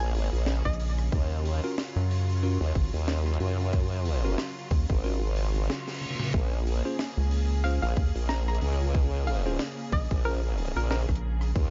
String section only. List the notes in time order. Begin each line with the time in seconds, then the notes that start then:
Already playing: C#3 A#3 G#4
1.12 F#3 F4
6.33 C#3 A#3 G#4
11.55 F#3 F4